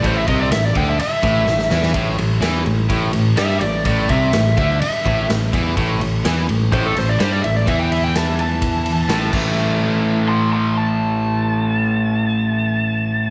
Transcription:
<<
  \new Staff \with { instrumentName = "Electric slide guitar" } { \time 4/4 \key a \minor \tempo 4 = 126 c''16 e''16 dis''16 d''16 e''16 d''16 g''16 e''16 e''2 | r2. e''8 d''8 | d''8 e''4 e''8 e''4 r4 | r2 c''16 a'16 c''16 d''16 c''16 d''16 e''16 d''16 |
e''16 g''16 e''16 g''16 a''8 a''2 r8 | r4. <a'' c'''>8 <a'' c'''>8 a''4.~ | a''1 | }
  \new Staff \with { instrumentName = "Overdriven electric guitar" } { \clef bass \time 4/4 \key a \minor a,8 c8 a,8 d8 r8 a,8 a,8 e8 | a,8 a,8 e8 a,8 a,8 a,8 g8 a,8 | a,8 c8 a,8 d8 r8 a,8 a,8 e8 | a,8 a,8 e8 a,8 a,8 a,8 g8 a,8 |
e2. a,8 <a, e a>8~ | <a, e a>1~ | <a, e a>1 | }
  \new Staff \with { instrumentName = "Picked electric bass" } { \clef bass \time 4/4 \key a \minor a,,8 c,8 a,,8 d,8 r8 a,,8 a,,8 e,8 | a,,8 a,,8 e,8 a,,8 a,,8 a,,8 g,8 a,,8 | a,,8 c,8 a,,8 d,8 r8 a,,8 a,,8 e,8 | a,,8 a,,8 e,8 a,,8 a,,8 a,,8 g,8 a,,8 |
e,2. a,,8 a,,8~ | a,,1~ | a,,1 | }
  \new DrumStaff \with { instrumentName = "Drums" } \drummode { \time 4/4 <bd cymr>8 <bd cymr>8 <cymr sn>8 <bd cymr>8 cymr8 <bd cymr>8 sn16 sn16 sn16 sn16 | <bd cymr>8 cymr8 <cymr sn>8 cymr8 <bd cymr>8 cymr8 <cymr sn>8 cymr8 | <bd cymr>8 <bd cymr>8 <cymr sn>8 <bd cymr>8 cymr8 <bd cymr>8 <cymr sn>8 <bd cymr>8 | <bd cymr>8 cymr8 <cymr sn>8 cymr8 <bd cymr>8 cymr8 <cymr sn>8 cymr8 |
<bd cymr>8 cymr8 <cymr sn>8 cymr8 <bd cymr>8 cymr8 <cymr sn>8 <cymc bd>8 | r4 r4 r4 r4 | r4 r4 r4 r4 | }
>>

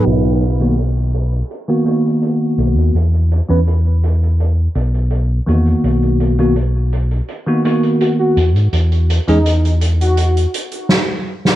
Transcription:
<<
  \new Staff \with { instrumentName = "Soft synth lead" } { \time 4/4 \key b \major \tempo 4 = 83 r1 | r1 | r2. fis'16 fis'16 r8 | r8. dis'8 r8 fis'8 r4. r16 | }
  \new Staff \with { instrumentName = "Tine electric piano" } { \time 4/4 \key b \major <fis b dis' b'>8 r16 <dis ais b fis'>16 r4 r16 <dis ais b fis'>16 <dis ais b fis'>4. | r8. <e b cis' b'>16 r2 r8 <dis ais b fis'>8~ | <dis ais b fis'>8. <dis ais b fis'>16 r4 r16 <dis ais b fis'>16 <dis ais b fis'>4 r8 | r8. <e gis cis' gis'>16 r2. | }
  \new Staff \with { instrumentName = "Fingered electric bass" } { \clef bass \time 4/4 \key b \major b,,4.~ b,,16 r4. r16 b,,16 dis,16 | e,8 r16 e,4. r16 b,,8. r16 e,16 r16 | b,,4.~ b,,16 r4. r16 e,16 gis,16 | e,8 r16 e,4. r4. r16 | }
  \new DrumStaff \with { instrumentName = "Drums" } \drummode { \time 4/4 <cymc hh>16 hh16 hh16 hh16 hh8 hh16 hh16 hh8 hh16 hh16 hh8 hh16 hh16 | hh16 hh16 hh16 hh16 hh8 hh16 hh16 hh8 hh16 hh16 hh8 hh16 hh16 | hh16 hh16 hh16 hh16 hh8 hh16 hh16 hh8 hh16 hh16 hh8 hh16 hh16 | hh16 hh16 hh16 hh16 hh16 hh16 hh16 hh16 hh16 hh16 hh16 hh16 sn8. sn16 | }
>>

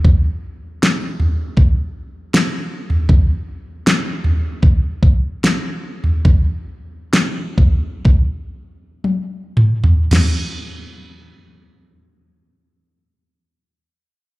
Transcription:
\new DrumStaff \with { instrumentName = "Drums" } \drummode { \time 4/4 \tempo 4 = 71 <bd tomfh>4 sn8 tomfh8 <bd tomfh>4 sn8. tomfh16 | <bd tomfh>4 sn8 tomfh8 <bd tomfh>8 bd8 sn8. tomfh16 | <bd tomfh>4 sn8 <bd tomfh>8 <bd tomfh>4 tommh8 toml16 tomfh16 | <cymc sn tomfh>4 r4 r4 r4 | }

